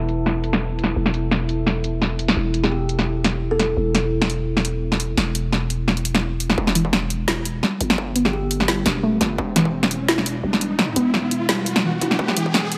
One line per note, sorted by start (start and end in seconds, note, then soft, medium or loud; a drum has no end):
0.00 0.95 E1 medium
0.00 6.56 B3 medium
0.00 6.58 E4 medium
0.00 7.20 A4 medium
0.09 closed hi-hat medium
0.26 snare soft
0.44 closed hi-hat medium
0.53 snare medium
0.79 closed hi-hat medium
0.84 snare soft
0.96 2.35 E1 medium
1.06 snare soft
1.14 closed hi-hat medium
1.31 snare medium
1.49 closed hi-hat medium
1.67 snare soft
1.84 closed hi-hat medium
2.02 snare medium
2.19 closed hi-hat medium
2.28 snare medium
2.36 3.75 E1 medium
2.54 closed hi-hat medium
2.64 2.69 G4 medium
2.64 snare soft
2.72 2.78 G4 medium
2.89 closed hi-hat medium
2.99 snare soft
3.24 snare medium
3.24 closed hi-hat medium
3.51 3.86 A4 medium
3.60 snare medium
3.60 closed hi-hat medium
3.77 5.16 E1 medium
3.95 snare medium
3.95 closed hi-hat medium
4.22 snare medium
4.30 closed hi-hat medium
4.57 snare medium
4.65 closed hi-hat medium
4.92 snare soft
5.00 closed hi-hat medium
5.17 6.56 E1 medium
5.17 snare medium
5.35 closed hi-hat medium
5.53 snare medium
5.70 closed hi-hat medium
5.88 snare medium
5.97 closed hi-hat soft
6.05 closed hi-hat medium
6.15 snare medium
6.40 closed hi-hat medium
6.50 snare medium
6.58 7.62 E1 loud
6.58 12.78 B3 medium
6.58 kick loud
6.58 riser medium
6.67 snare medium
6.75 7.26 E3 loud
6.75 12.78 E4 medium
6.75 closed hi-hat medium
6.85 kick medium
6.93 12.78 B4 medium
6.93 snare medium
7.10 closed hi-hat medium
7.28 7.45 E4 loud
7.28 snare loud
7.28 snare soft
7.45 closed hi-hat medium
7.63 8.14 G3 medium
7.63 snare medium
7.81 8.85 G1 loud
7.81 closed hi-hat medium
7.90 snare medium
7.98 kick loud
8.16 8.67 B3 loud
8.16 closed hi-hat medium
8.25 8.30 G4 medium
8.25 snare soft
8.33 8.39 G4 medium
8.51 closed hi-hat medium
8.60 snare medium
8.68 9.02 G3 loud
8.68 snare loud
8.86 9.20 E1 medium
8.86 snare medium
8.86 closed hi-hat medium
9.03 9.54 A3 loud
9.21 9.37 G1 medium
9.21 kick medium
9.21 snare medium
9.21 closed hi-hat medium
9.38 10.42 E1 loud
9.38 kick loud
9.56 10.07 E3 loud
9.56 snare medium
9.56 closed hi-hat medium
9.65 kick medium
9.83 snare medium
9.91 closed hi-hat medium
10.08 10.25 E4 loud
10.08 snare loud
10.18 snare medium
10.26 closed hi-hat medium
10.43 10.95 E1 loud
10.43 10.95 G3 medium
10.53 snare soft
10.61 closed hi-hat medium
10.79 kick loud
10.79 snare medium
10.96 12.00 E1 loud
10.96 11.47 B3 loud
10.96 closed hi-hat medium
11.14 snare medium
11.31 closed hi-hat medium
11.49 11.65 G3 loud
11.49 snare loud
11.49 snare soft
11.66 closed hi-hat medium
11.76 snare medium
11.84 12.00 E3 medium
12.01 12.18 E1 loud
12.01 12.18 E4 medium
12.01 kick medium
12.01 closed hi-hat medium
12.11 snare medium
12.19 12.78 E1 loud
12.19 kick loud
12.28 snare soft
12.37 12.78 E3 loud
12.37 closed hi-hat medium
12.46 kick medium
12.54 snare medium
12.72 closed hi-hat medium